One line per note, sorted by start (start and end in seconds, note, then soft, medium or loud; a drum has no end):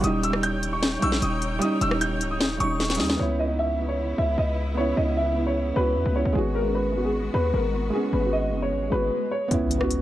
0.01 0.98 D#1 loud
0.01 0.29 G3 loud
0.01 0.30 C#4 loud
0.01 3.16 D#4 medium
0.01 3.16 C#5 medium
0.01 3.16 G5 medium
0.01 0.20 D#6 medium
0.01 closed hi-hat medium
0.07 0.32 D#4 loud
0.23 0.40 E6 medium
0.23 closed hi-hat medium
0.30 0.93 G3 medium
0.30 0.95 C#4 medium
0.30 cross-stick medium
0.36 0.96 D#4 loud
0.43 0.71 G6 medium
0.43 closed hi-hat medium
0.63 closed hi-hat medium
0.73 1.01 C#6 medium
0.83 snare loud
0.83 closed hi-hat medium
0.99 1.21 A#1 loud
0.99 1.54 G3 medium
0.99 1.55 C#4 medium
0.99 1.21 C#6 medium
0.99 1.19 E6 medium
0.99 closed hi-hat medium
1.05 1.57 D#4 loud
1.12 snare medium
1.22 1.60 D#1 loud
1.22 1.59 D#6 medium
1.22 closed hi-hat medium
1.42 closed hi-hat medium
1.59 1.87 G3 loud
1.59 1.88 C#4 loud
1.59 1.78 D#6 medium
1.59 closed hi-hat medium
1.65 1.90 D#4 loud
1.81 2.22 D#1 loud
1.81 1.98 E6 medium
1.81 closed hi-hat medium
1.89 2.52 G3 medium
1.89 2.53 C#4 medium
1.89 cross-stick loud
1.94 2.54 D#4 loud
2.01 2.29 G6 medium
2.01 closed hi-hat medium
2.21 2.42 C#1 loud
2.21 closed hi-hat medium
2.31 2.59 D#6 medium
2.41 2.59 D#1 loud
2.41 snare loud
2.41 closed hi-hat medium
2.57 3.01 D#1 loud
2.57 2.94 G3 medium
2.57 2.96 C#4 medium
2.57 2.97 C#6 medium
2.57 3.16 D#6 medium
2.57 closed hi-hat medium
2.63 2.97 D#4 medium
2.80 snare medium
2.80 closed hi-hat medium
2.85 closed hi-hat medium
2.90 snare medium
2.90 closed hi-hat medium
2.95 3.16 G3 medium
2.95 closed hi-hat medium
3.00 3.19 D#2 loud
3.00 3.17 C#4 medium
3.00 3.19 D#4 loud
3.00 3.16 D#6 medium
3.00 snare loud
3.00 open hi-hat medium
3.10 snare loud
3.16 4.14 C#2 loud
3.16 6.32 C#3 medium
3.16 3.44 B3 loud
3.16 6.32 B3 medium
3.16 3.46 C#4 medium
3.16 6.32 E4 medium
3.16 3.36 C#5 medium
3.22 3.47 E4 loud
3.39 3.56 D#5 medium
3.46 3.74 B3 medium
3.46 3.76 C#4 medium
3.52 3.77 D#4 medium
3.59 3.87 E5 medium
3.76 4.48 B3 medium
3.76 4.49 C#4 medium
3.81 4.51 E4 medium
3.89 4.16 C#5 medium
4.18 4.37 C#2 loud
4.18 4.35 E5 medium
4.38 4.95 C#2 loud
4.38 4.75 D#5 medium
4.74 5.02 B3 medium
4.74 5.04 C#4 medium
4.74 4.94 C#5 medium
4.80 5.05 E4 loud
4.97 5.73 C#2 loud
4.97 5.14 D#5 medium
5.05 5.32 B3 medium
5.05 5.34 C#4 medium
5.10 5.35 E4 medium
5.17 5.45 E5 medium
5.34 5.70 B3 medium
5.34 5.72 C#4 medium
5.39 5.73 E4 medium
5.47 5.74 C#5 medium
5.73 5.97 C#2 loud
5.73 6.10 B3 medium
5.73 6.11 C#4 medium
5.73 6.13 B4 medium
5.79 6.13 F#4 medium
5.96 6.05 E2 loud
6.06 6.25 C#2 loud
6.13 6.32 B3 medium
6.13 6.33 C#4 medium
6.13 6.32 C#5 medium
6.18 6.35 E4 medium
6.25 6.35 C#2 loud
6.33 7.30 G#1 loud
6.33 6.60 G#3 loud
6.33 9.09 G#3 medium
6.33 9.09 B3 medium
6.33 6.62 B3 medium
6.33 9.09 F#4 medium
6.33 6.52 G#4 medium
6.38 6.63 F#4 loud
6.55 6.71 A#4 medium
6.62 6.90 G#3 medium
6.62 6.91 B3 medium
6.67 6.93 C#4 medium
6.75 7.03 B4 medium
6.92 7.64 G#3 medium
6.92 7.65 B3 medium
6.97 7.67 F#4 medium
7.04 7.32 G#4 medium
7.34 7.53 D#2 loud
7.34 7.50 B4 medium
7.54 7.92 G#1 loud
7.54 7.91 A#4 medium
7.90 8.18 G#3 loud
7.90 8.19 B3 medium
7.90 8.10 G#4 medium
7.90 swell medium
7.95 8.21 C#4 loud
8.13 8.54 G#1 loud
8.13 8.29 B4 medium
8.21 8.48 G#3 medium
8.21 8.50 B3 medium
8.26 8.51 F#4 medium
8.33 8.61 D#5 medium
8.50 8.74 F#1 loud
8.50 8.86 G#3 medium
8.50 8.88 B3 medium
8.56 8.89 C#4 medium
8.62 8.90 C#5 medium
8.72 8.91 G#1 loud
8.89 9.11 G#1 loud
8.89 9.26 G#3 medium
8.89 9.27 B3 medium
8.89 9.29 B4 medium
8.95 9.29 F#4 medium
9.31 9.48 C#5 medium
9.48 10.02 C#2 loud
9.48 9.76 B3 loud
9.48 9.77 C#4 medium
9.48 closed hi-hat medium
9.48 impact medium
9.54 9.79 E4 loud
9.71 closed hi-hat medium
9.78 10.02 B3 medium
9.78 10.02 C#4 medium
9.78 cross-stick medium
9.84 10.02 F#4 medium
9.91 closed hi-hat medium